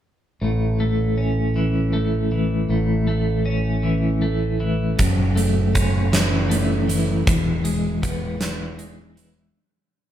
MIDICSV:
0, 0, Header, 1, 4, 480
1, 0, Start_track
1, 0, Key_signature, 3, "major"
1, 0, Tempo, 760456
1, 269, Time_signature, 6, 3, 24, 8
1, 6386, End_track
2, 0, Start_track
2, 0, Title_t, "Clean electric guitar"
2, 0, Program_c, 0, 27
2, 262, Note_on_c, 0, 45, 46
2, 506, Note_on_c, 0, 57, 41
2, 743, Note_on_c, 0, 61, 35
2, 983, Note_on_c, 0, 52, 43
2, 1216, Note_off_c, 0, 57, 0
2, 1219, Note_on_c, 0, 57, 47
2, 1460, Note_off_c, 0, 52, 0
2, 1463, Note_on_c, 0, 52, 45
2, 1467, Note_off_c, 0, 45, 0
2, 1704, Note_on_c, 0, 45, 47
2, 1937, Note_off_c, 0, 57, 0
2, 1940, Note_on_c, 0, 57, 45
2, 2179, Note_off_c, 0, 61, 0
2, 2182, Note_on_c, 0, 61, 44
2, 2415, Note_off_c, 0, 52, 0
2, 2418, Note_on_c, 0, 52, 45
2, 2655, Note_off_c, 0, 57, 0
2, 2662, Note_on_c, 0, 57, 46
2, 2903, Note_off_c, 0, 52, 0
2, 2905, Note_on_c, 0, 52, 53
2, 2909, Note_off_c, 0, 45, 0
2, 3139, Note_on_c, 0, 42, 50
2, 3147, Note_off_c, 0, 57, 0
2, 3147, Note_off_c, 0, 61, 0
2, 3158, Note_off_c, 0, 52, 0
2, 3379, Note_on_c, 0, 57, 47
2, 3627, Note_on_c, 0, 61, 48
2, 3864, Note_on_c, 0, 52, 58
2, 4093, Note_off_c, 0, 57, 0
2, 4100, Note_on_c, 0, 57, 55
2, 4343, Note_off_c, 0, 52, 0
2, 4345, Note_on_c, 0, 52, 61
2, 4346, Note_off_c, 0, 42, 0
2, 4584, Note_on_c, 0, 40, 61
2, 4586, Note_off_c, 0, 57, 0
2, 4590, Note_off_c, 0, 61, 0
2, 4824, Note_on_c, 0, 56, 57
2, 5064, Note_on_c, 0, 59, 51
2, 5299, Note_off_c, 0, 52, 0
2, 5301, Note_on_c, 0, 52, 60
2, 5537, Note_off_c, 0, 56, 0
2, 5544, Note_on_c, 0, 56, 60
2, 5774, Note_off_c, 0, 52, 0
2, 5781, Note_on_c, 0, 52, 62
2, 5786, Note_off_c, 0, 40, 0
2, 6026, Note_off_c, 0, 52, 0
2, 6027, Note_off_c, 0, 56, 0
2, 6027, Note_off_c, 0, 59, 0
2, 6386, End_track
3, 0, Start_track
3, 0, Title_t, "Fingered electric bass"
3, 0, Program_c, 1, 33
3, 261, Note_on_c, 1, 33, 48
3, 1682, Note_off_c, 1, 33, 0
3, 1699, Note_on_c, 1, 33, 48
3, 3121, Note_off_c, 1, 33, 0
3, 3146, Note_on_c, 1, 30, 62
3, 4564, Note_off_c, 1, 30, 0
3, 4590, Note_on_c, 1, 28, 61
3, 6004, Note_off_c, 1, 28, 0
3, 6386, End_track
4, 0, Start_track
4, 0, Title_t, "Drums"
4, 3148, Note_on_c, 9, 42, 56
4, 3151, Note_on_c, 9, 36, 77
4, 3211, Note_off_c, 9, 42, 0
4, 3214, Note_off_c, 9, 36, 0
4, 3392, Note_on_c, 9, 42, 39
4, 3455, Note_off_c, 9, 42, 0
4, 3630, Note_on_c, 9, 42, 46
4, 3632, Note_on_c, 9, 36, 57
4, 3693, Note_off_c, 9, 42, 0
4, 3695, Note_off_c, 9, 36, 0
4, 3871, Note_on_c, 9, 38, 81
4, 3871, Note_on_c, 9, 42, 57
4, 3934, Note_off_c, 9, 38, 0
4, 3934, Note_off_c, 9, 42, 0
4, 4112, Note_on_c, 9, 42, 45
4, 4175, Note_off_c, 9, 42, 0
4, 4351, Note_on_c, 9, 42, 44
4, 4415, Note_off_c, 9, 42, 0
4, 4590, Note_on_c, 9, 42, 57
4, 4591, Note_on_c, 9, 36, 91
4, 4653, Note_off_c, 9, 42, 0
4, 4654, Note_off_c, 9, 36, 0
4, 4828, Note_on_c, 9, 42, 49
4, 4891, Note_off_c, 9, 42, 0
4, 5070, Note_on_c, 9, 36, 58
4, 5070, Note_on_c, 9, 42, 49
4, 5133, Note_off_c, 9, 36, 0
4, 5133, Note_off_c, 9, 42, 0
4, 5306, Note_on_c, 9, 38, 85
4, 5306, Note_on_c, 9, 42, 65
4, 5369, Note_off_c, 9, 38, 0
4, 5369, Note_off_c, 9, 42, 0
4, 5547, Note_on_c, 9, 42, 55
4, 5610, Note_off_c, 9, 42, 0
4, 5789, Note_on_c, 9, 42, 47
4, 5852, Note_off_c, 9, 42, 0
4, 6386, End_track
0, 0, End_of_file